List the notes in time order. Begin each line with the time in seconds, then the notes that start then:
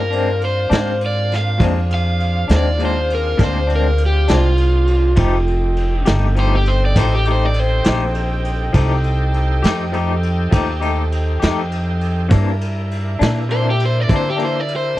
Already playing: G2 C4 D4 F4 A#4 C5 D5 F5
0.10 G#3 C4 D4, ride
0.41 C5, ride
0.70 G#2 G#3 C4 D4, snare, ride
1.01 ride
1.06 D5
1.31 snare, ride
1.36 F5
1.58 F2 A#2 G#3 C4 D4 F4 G#4, kick, ride
1.91 F5, ride
2.20 ride
2.48 D#2 G#3 C4 D4, snare, ride
2.56 D5
2.78 A#2 G#3 C4 D4, ride
2.85 C5
3.10 ride
3.15 A#4
3.38 D2 A#2 G#3 C4 D4, kick, snare, ride
3.44 C5
3.67 G#3 C4 D4, ride
3.76 A#4
3.98 ride
4.06 G4
4.28 C2 G#3 C4 D4, snare, ride
4.34 F4
4.57 ride
4.87 ride
5.16 F1 F3 A3 C4 D#4 G4 A4 D#5 G5, kick, ride
5.47 ride
5.76 ride
6.06 G1 A3 D#4 G4, snare, ride
6.35 F3 A3 D#4 G4, ride
6.40 C5
6.56 G4
6.66 C5, ride
6.85 D5
6.96 A1 F3 A3 D#4 G4 C5, kick, snare, ride
7.15 G4
7.25 A3 D#4 G4, ride
7.32 C5
7.45 D5
7.54 ride
7.60 C5
7.84 A#1 D#4 G4, snare, ride
7.89 A3
8.14 ride
8.45 ride
8.73 C2 F3 A3 D#4 G4 A4 C5, kick, ride
9.04 ride
9.34 ride
9.63 F2 A3 D#4 G4, snare, ride
9.92 F3 A3 D#4 G4, ride
10.23 ride
10.51 D#2 F3 A3 D#4 G4, kick, ride
10.80 A3 D#4 G4, ride
11.12 ride
11.40 F2 A3 D#4 G4, snare, ride
11.72 ride
12.01 ride
12.29 G2 C3 E3 A#3 D4 E4 G4 A#4 D5 E5, kick, ride
12.61 ride
12.91 ride
13.19 A#2 E3 A#3 D4, snare, ride
13.49 C3 E3 A#3 D4 C5, ride
13.70 G4
13.80 ride
13.86 C5
14.01 D5
14.08 C3 D3 E3 A#3 D4, kick, ride
14.16 C5
14.30 G4
14.36 E3 A#3 D4, ride
14.45 C5
14.60 D5
14.68 ride
14.76 C5